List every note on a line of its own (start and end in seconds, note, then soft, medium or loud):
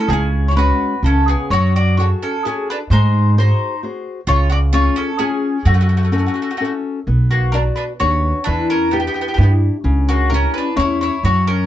0.08 0.69 C#2 loud
0.08 0.55 C#3 medium
0.08 0.46 G#4 medium
0.13 0.48 C#4 medium
0.48 0.56 E4 soft
0.48 0.55 C#5 medium
0.55 0.93 G#3 soft
0.55 0.93 C#4 soft
0.55 0.94 F#4 medium
0.55 1.01 F#4 medium
0.55 1.04 B4 medium
1.03 1.33 C#2 medium
1.03 1.49 C#3 medium
1.03 1.27 C#4 medium
1.03 1.26 A4 medium
1.28 1.50 B3 medium
1.28 1.49 G#4 medium
1.50 2.11 F#2 loud
1.50 1.97 F#3 medium
1.50 1.74 F#4 medium
1.50 1.75 C#5 medium
1.76 1.97 F#4 medium
1.76 1.97 D5 medium
1.97 2.35 F#4 medium
1.97 2.06 F#4 medium
1.97 2.36 G#4 soft
1.97 2.36 A4 soft
1.97 2.04 C#5 medium
2.23 2.43 C#4 medium
2.23 2.43 A4 medium
2.45 2.68 C#4 medium
2.45 2.82 F#4 soft
2.45 2.67 G#4 medium
2.45 2.82 G#4 soft
2.45 2.82 A4 medium
2.70 2.77 D4 medium
2.70 2.76 B4 medium
2.90 3.50 G#2 medium
2.90 3.36 G#3 medium
2.90 3.35 D#4 medium
2.90 3.34 C5 medium
3.37 3.81 D#4 medium
3.37 3.74 F#4 medium
3.37 3.74 G#4 soft
3.37 3.80 C5 medium
3.37 3.74 C5 medium
3.83 4.19 F#4 medium
3.83 4.20 G#4 soft
3.83 4.20 C5 soft
4.27 4.87 C#2 loud
4.27 4.73 C#3 medium
4.27 4.49 F4 medium
4.27 4.50 C#5 loud
4.50 4.56 F#4 medium
4.50 4.58 D5 loud
4.73 5.10 C#4 medium
4.73 4.95 F4 medium
4.73 5.10 F4 soft
4.73 5.10 G#4 medium
4.73 4.97 C#5 loud
4.96 5.17 C#4 medium
4.96 5.18 A4 medium
5.19 5.62 C#4 medium
5.19 5.57 C#4 soft
5.19 5.57 F4 soft
5.19 5.66 G#4 medium
5.19 5.57 G#4 medium
5.65 6.26 F#2 medium
5.65 6.11 F#3 medium
5.65 5.73 A3 medium
5.65 5.73 F#4 medium
5.74 5.80 A3 soft
5.74 5.81 F#4 soft
5.81 5.88 A3 medium
5.81 5.88 F#4 medium
5.89 5.96 A3 soft
5.89 5.96 F#4 soft
5.97 6.03 A3 soft
5.97 6.02 F#4 medium
6.03 6.11 A3 soft
6.03 6.10 F#4 soft
6.12 6.18 A3 soft
6.12 6.50 C#4 soft
6.12 6.17 F#4 soft
6.12 6.50 F#4 soft
6.12 6.51 A4 medium
6.18 6.26 A3 soft
6.18 6.25 F#4 soft
6.26 6.34 A3 soft
6.26 6.33 F#4 soft
6.34 6.41 A3 soft
6.34 6.41 F#4 soft
6.42 6.49 A3 soft
6.42 6.48 F#4 soft
6.51 6.56 A3 soft
6.51 6.57 F#4 soft
6.57 6.63 A3 soft
6.57 6.99 C#4 soft
6.57 6.64 F#4 medium
6.57 6.99 F#4 soft
6.61 6.72 A3 soft
6.61 6.72 F#4 soft
6.61 6.99 A4 medium
7.07 7.68 B1 medium
7.07 7.53 B3 medium
7.31 7.53 A#3 medium
7.31 7.52 F#4 medium
7.52 7.60 D4 medium
7.52 7.92 F#4 soft
7.52 7.59 A#4 medium
7.52 7.92 B4 soft
7.52 7.92 D5 medium
7.76 7.83 D4 medium
7.76 7.82 B4 medium
8.00 8.31 D#2 medium
8.00 8.38 D4 soft
8.00 8.38 F#4 soft
8.00 8.44 F#4 medium
8.00 8.38 B4 soft
8.00 8.45 C#5 medium
8.44 9.07 E2 medium
8.44 8.92 E3 medium
8.44 8.68 D4 medium
8.44 8.69 B4 medium
8.70 8.91 C#4 medium
8.70 8.94 A#4 medium
8.91 8.98 B3 medium
8.91 9.29 D4 soft
8.91 9.30 E4 soft
8.91 8.99 G4 medium
8.91 9.30 G4 medium
9.00 9.06 B3 soft
9.00 9.06 G4 soft
9.07 9.13 B3 soft
9.07 9.14 G4 medium
9.14 9.20 B3 soft
9.14 9.20 G4 medium
9.21 9.27 B3 soft
9.21 9.27 G4 medium
9.28 9.35 B3 soft
9.28 9.33 G4 medium
9.34 9.68 G2 loud
9.34 9.42 B3 soft
9.34 9.40 G4 medium
9.39 9.76 D4 medium
9.39 9.76 E4 soft
9.39 9.76 G4 soft
9.39 9.50 G4 soft
9.43 9.51 B3 soft
9.84 10.44 C#2 medium
9.84 10.29 C#3 medium
10.09 10.30 A#3 medium
10.09 10.30 F#4 medium
10.30 10.68 C#4 medium
10.30 10.68 E4 soft
10.30 10.69 G4 medium
10.30 10.53 A#4 medium
10.34 10.55 C#4 medium
10.54 10.78 D4 medium
10.54 10.76 B4 medium
10.76 11.08 E2 medium
10.76 11.14 C#4 soft
10.76 11.14 E4 soft
10.76 11.01 E4 medium
10.76 11.15 G4 soft
10.76 10.99 C#5 medium
11.01 11.23 E4 medium
11.01 11.23 C#5 medium
11.23 11.66 F#2 medium
11.23 11.66 F#3 medium
11.23 11.47 F#4 medium
11.23 11.47 C#5 medium
11.47 11.66 C#4 medium
11.47 11.66 A#4 medium